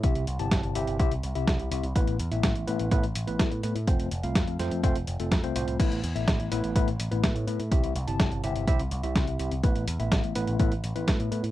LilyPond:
<<
  \new Staff \with { instrumentName = "Tine electric piano" } { \time 4/4 \key a \minor \tempo 4 = 125 <c c' e' g' e''>8 r16 <c c' e' g' a''>8. <c c' e' g' e''>8 <c c' e' g' e''>16 r8 <c c' e' g' e''>8. <c' e' g' e''>16 r16 | <a, a b e' b'>8 r16 <a, a b e' e''>8. <a, a b e' b'>8 <a, a b e' b'>16 r8 <a, a b e' b'>8. <a b e' b'>16 r16 | <a c' f' c''>8 r16 <a c' f' f''>8. <a c' f' c''>8 <a c' f' c''>16 r8 <a c' f' a'>8 <a c' f' c''>16 <a, a c' f' c''>8 | <a, a b e' b'>8 r16 <a, a b e' e''>8. <a, a b e' b'>8 <a, a b e' b'>16 r8 <a, a b e' b'>8. <a b e' b'>16 r16 |
<c c' e' g' e''>8 r16 <c c' e' g' a''>8. <c c' e' g' e''>8 <c c' e' g' e''>16 r8 <c c' e' g' e''>8. <c' e' g' e''>16 r16 | <a, a b e' b'>8 r16 <a, a b e' e''>8. <a, a b e' b'>8 <a, a b e' b'>16 r8 <a, a b e' b'>8. <a b e' b'>16 r16 | }
  \new Staff \with { instrumentName = "Picked electric bass" } { \clef bass \time 4/4 \key a \minor c,16 c,16 c,16 g,,16 g,,16 g,,16 g,,16 g,,16 c,16 c,16 c,16 c,16 c,16 c,16 c,16 c,16 | a,,16 a,,16 e,16 a,,16 a,,16 a,,16 a,,16 a,,16 a,,16 a,,16 a,,16 a,,16 a,16 a,16 a,16 a,16 | f,,16 f,,16 f,,16 c,16 f,16 f,16 f,16 f,16 f,,16 f,,16 f,,16 f,,16 f,16 c,16 c,16 c,16 | a,,16 a,,16 e,16 a,,16 a,,16 a,,16 a,,16 a,,16 a,,16 a,,16 a,,16 a,,16 a,16 a,16 a,16 a,16 |
c,16 c,16 c,16 g,,16 g,,16 g,,16 g,,16 g,,16 c,16 c,16 c,16 c,16 c,16 c,16 c,16 c,16 | a,,16 a,,16 e,16 a,,16 a,,16 a,,16 a,,16 a,,16 a,,16 a,,16 a,,16 a,,16 a,16 a,16 a,16 a,16 | }
  \new DrumStaff \with { instrumentName = "Drums" } \drummode { \time 4/4 <hh bd>16 hh16 hh16 hh16 <hh bd sn>16 hh16 hh16 hh16 <hh bd>16 hh16 hh16 hh16 <hh bd sn>16 hh16 hh16 hh16 | <hh bd>16 hh16 hh16 hh16 <hh bd sn>16 hh16 hh16 hh16 <hh bd>16 hh16 hh16 hh16 <hh bd sn>16 hh16 hh16 hh16 | <hh bd>16 hh16 hh16 hh16 <hh bd sn>16 hh16 <hh sn>16 hh16 <hh bd>16 hh16 hh16 hh16 <hh bd sn>16 hh16 hh16 hh16 | <cymc hh bd>16 hh16 hh16 hh16 <hh bd sn>16 hh16 hh16 hh16 <hh bd>16 hh16 hh16 hh16 <hh bd sn>16 hh16 hh16 hh16 |
<hh bd>16 hh16 hh16 hh16 <hh bd sn>16 hh16 hh16 hh16 <hh bd>16 hh16 hh16 hh16 <hh bd sn>16 hh16 hh16 hh16 | <hh bd>16 hh16 hh16 hh16 <hh bd sn>16 hh16 hh16 hh16 <hh bd>16 hh16 hh16 hh16 <hh bd sn>16 hh16 hh16 hh16 | }
>>